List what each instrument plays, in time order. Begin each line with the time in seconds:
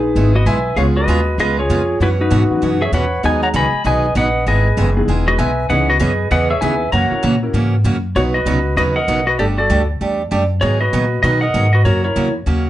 Already playing: upright bass A#1, electric slide guitar D#4 B4, muted trumpet G#4
0.15 upright bass G#1, steel-string acoustic guitar D#3 G#3 B3 E4 G#4
0.35 electric slide guitar F#4 D#5, muted trumpet B4
0.46 upright bass B1, steel-string acoustic guitar D#3 G#3 B3 E4 G#4, electric slide guitar B4 G#5, muted trumpet E5
0.76 upright bass C#2, steel-string acoustic guitar C#3 G#3 B3 F4 G#4, upright piano G#3 B3 C#4 F4 G#4, electric slide guitar G#4 F5, muted trumpet C#5
0.96 electric slide guitar F#4 D#5, muted trumpet B4
1.07 upright bass D#2, steel-string acoustic guitar C#3 G#3 B3 F4 G#4
1.38 upright bass C#2, steel-string acoustic guitar C#3 G#3 B3 F4 G#4, electric slide guitar G#4 D#5, muted trumpet B4
1.59 electric slide guitar F4 C#5, muted trumpet G#4
1.69 upright bass F2, steel-string acoustic guitar C#3 G#3 B3 F4 G#4
2.00 upright bass F#2, steel-string acoustic guitar B2 E3 B3 C#4 F#4, electric slide guitar E4 B4, muted trumpet F#4
2.20 electric slide guitar D#4 B4, muted trumpet F#4
2.30 upright bass G#2, steel-string acoustic guitar B2 E3 B3 C#4 F#4
2.50 upright piano E3 F#3 B3 C#4 F#4, muted upright bass stroke
2.62 upright bass F#2, steel-string acoustic guitar B2 E3 B3 C#4 F#4
2.82 electric slide guitar G#4 E5, muted trumpet C#5
2.92 upright bass E2, steel-string acoustic guitar B2 E3 B3 C#4 F#4, electric slide guitar B4 F#5, muted trumpet C#5
3.23 upright bass D#2, steel-string acoustic guitar D#3 F#3 B3 D#4 G#4, upright piano G#3 B3 D#4 F#4 G#4, electric slide guitar B4 G#5, muted trumpet D#5
3.43 electric slide guitar C#5 A#5, muted trumpet F#5
3.54 upright bass C#2, steel-string acoustic guitar D#3 F#3 B3 D#4 G#4, electric slide guitar D#5 B5, muted trumpet G#5
3.73 muted upright bass stroke
3.84 upright bass B1, steel-string acoustic guitar D#3 F#3 B3 D#4 G#4, electric slide guitar B4 G#5, muted trumpet D#5
4.15 upright bass A#1, steel-string acoustic guitar D#3 F#3 B3 D#4 G#4, electric slide guitar B4 F#5, muted trumpet D#5
4.46 upright bass G#1, steel-string acoustic guitar D#3 G#3 B3 E4 G#4, electric slide guitar G#4 D#5, muted trumpet B4
4.77 upright bass F#1, steel-string acoustic guitar D#3 G#3 B3 E4 G#4
4.96 upright piano G#3 B3 D#4 E4 G#4
5.08 upright bass E1, steel-string acoustic guitar D#3 G#3 B3 E4 G#4
5.28 electric slide guitar F#4 D#5, muted trumpet B4
5.38 upright bass B1, steel-string acoustic guitar D#3 G#3 B3 E4 G#4, electric slide guitar B4 G#5, muted trumpet E5
5.69 upright bass C#2, steel-string acoustic guitar C#3 E3 B3 C#4 G#4, upright piano B3 C#4 D#4 E4 G#4, electric slide guitar B4 F#5, muted trumpet D#5
5.89 electric slide guitar F#4 D#5, muted trumpet B4
5.99 upright bass F#2, steel-string acoustic guitar C#3 E3 B3 C#4 G#4, electric slide guitar G#4 D#5, muted trumpet B4
6.31 upright bass E2, steel-string acoustic guitar C#3 E3 B3 C#4 G#4, electric slide guitar B4 F#5, muted trumpet D#5
6.50 electric slide guitar G#4 E5, muted trumpet C#5
6.61 upright bass D#2, steel-string acoustic guitar C#3 E3 B3 C#4 G#4, upright piano B3 C#4 D#4 E4 G#4, electric slide guitar B4 G#5, muted trumpet E5
6.92 upright bass F#2, steel-string acoustic guitar C#3 E3 A#3 C#4 F#4, electric slide guitar C#5 A#5, muted trumpet F#5
7.11 upright piano A#3 C#4 E4 F#4 A#4, muted upright bass stroke
7.23 upright bass A#2, steel-string acoustic guitar C#3 E3 A#3 C#4 F#4
7.43 upright piano A#3 C#4 E4 F#4 A#4
7.53 upright bass G#2, steel-string acoustic guitar C#3 E3 A#3 C#4 F#4
7.84 upright bass F#2, steel-string acoustic guitar C#3 E3 A#3 C#4 F#4
8.15 upright bass B1, steel-string acoustic guitar B2 C#3 F#3 B3 D#4 B4, muted trumpet F#4, electric slide guitar F#4 C#5
8.34 electric slide guitar F#4 D#5, muted trumpet B4
8.46 upright bass C#2, steel-string acoustic guitar B2 C#3 F#3 B3 D#4 B4
8.77 upright bass D#2, steel-string acoustic guitar B2 C#3 F#3 B3 D#4 B4, electric slide guitar F#4 D#5, muted trumpet B4
8.96 electric slide guitar A#4 F#5, muted trumpet D#5
9.08 upright bass B1, steel-string acoustic guitar B2 C#3 F#3 B3 D#4 B4
9.27 electric slide guitar F#4 D#5, muted trumpet B4
9.39 upright bass G1, steel-string acoustic guitar G3 A3 D4 G4, electric slide guitar G4 D5, muted trumpet A4
9.58 electric slide guitar F#4 D5, muted trumpet A4
9.70 upright bass D2, steel-string acoustic guitar G3 A3 D4 G4
10.01 upright bass E2, steel-string acoustic guitar G3 A3 D4 G4
10.31 upright bass F#2, steel-string acoustic guitar G3 A3 D4 G4
10.61 upright bass G#2, steel-string acoustic guitar D#3 F#3 B3 D#4 G#4, electric slide guitar F#4 C#5, muted trumpet G#4
10.81 electric slide guitar F#4 D#5, muted trumpet B4
10.93 upright bass A#2, steel-string acoustic guitar D#3 F#3 B3 D#4 G#4
11.23 upright bass B2, steel-string acoustic guitar D#3 F#3 B3 D#4 G#4, electric slide guitar F#4 D#5, muted trumpet B4
11.41 electric slide guitar A#4 F#5, muted trumpet D#5
11.54 upright bass G#2, steel-string acoustic guitar D#3 F#3 B3 D#4 G#4
11.73 electric slide guitar F#4 D#5, muted trumpet B4
11.84 upright bass F#2, steel-string acoustic guitar C#3 F#3 A#3 C#4 F#4, electric slide guitar F#4 C#5, muted trumpet A#4
12.04 electric slide guitar E4 C#5, muted trumpet A#4
12.16 upright bass E2, steel-string acoustic guitar C#3 F#3 A#3 C#4 F#4
12.46 upright bass D#2, steel-string acoustic guitar C#3 F#3 A#3 C#4 F#4